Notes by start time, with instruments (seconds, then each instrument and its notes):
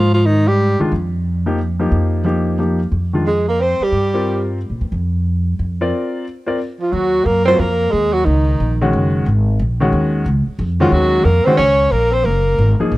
Already playing: upright bass G#2, tenor saxophone F3, alto saxophone F4
0.14 tenor saxophone F3, alto saxophone F4
0.26 tenor saxophone D#3, alto saxophone D#4
0.47 tenor saxophone G3, alto saxophone G4
0.79 grand piano D#3 G#3 D4 F4, muted upright bass stroke
0.92 upright bass F2
1.46 grand piano F3 A#3 D#4 G4
1.80 grand piano F3 A#3 D#4 G4
1.92 upright bass F2
2.25 grand piano F3 A#3 D#4 G4
2.59 grand piano F3 A#3 D#4 G4
2.92 upright bass F2
3.13 grand piano D#3 G#3 D4 F4
3.26 tenor saxophone G#3, alto saxophone G#4
3.48 tenor saxophone A#3, alto saxophone A#4
3.60 tenor saxophone C4, alto saxophone C5
3.80 tenor saxophone G3, alto saxophone G4, muted upright bass stroke
3.92 upright bass G2
4.14 grand piano C4 F4 G4 A#4
4.70 upright bass A#2
4.81 upright bass E2
4.92 upright bass F2
5.59 upright bass F2
5.81 grand piano C4 F4 A#4 D5
6.46 grand piano C4 F4 A#4 D5
6.80 tenor saxophone F3, alto saxophone F4
6.92 upright bass D#2, tenor saxophone F#3, alto saxophone F#4
7.24 upright bass F#2, tenor saxophone A#3, alto saxophone A#4
7.45 grand piano F#3 C4 F4 A#4, tenor saxophone C4, alto saxophone C5
7.56 upright bass F2, tenor saxophone A#3, alto saxophone A#4
7.91 upright bass D#2, tenor saxophone G#3, alto saxophone G#4
8.13 tenor saxophone F#3, alto saxophone F#4
8.25 upright bass C#2, tenor saxophone D#3, alto saxophone D#4
8.60 upright bass A#1
8.81 grand piano D#3 G#3 C#4 F#4
8.93 upright bass F#1
9.26 upright bass G#1
9.59 upright bass A#1
9.80 grand piano D#3 G#3 C#4 F#4
9.92 upright bass D#2
10.26 upright bass C#2
10.47 muted upright bass stroke
10.59 upright bass F2
10.80 grand piano D#3 G#3 C#4 F#4, tenor saxophone F3, alto saxophone F4
10.92 upright bass D#2, tenor saxophone F#3, alto saxophone F#4
11.24 upright bass F2, tenor saxophone A#3, alto saxophone A#4
11.45 grand piano D#3 G#3 C#4 F#4, tenor saxophone C4, alto saxophone C5, muted upright bass stroke
11.57 upright bass C#2, tenor saxophone C#4, alto saxophone C#5
11.91 upright bass A#1, tenor saxophone A#3, alto saxophone A#4
12.12 tenor saxophone C4, alto saxophone C5
12.24 upright bass F#1, tenor saxophone A#3, alto saxophone A#4
12.58 upright bass G#1
12.80 grand piano F3 A#3 D#4 G#4, muted upright bass stroke
12.92 upright bass A#1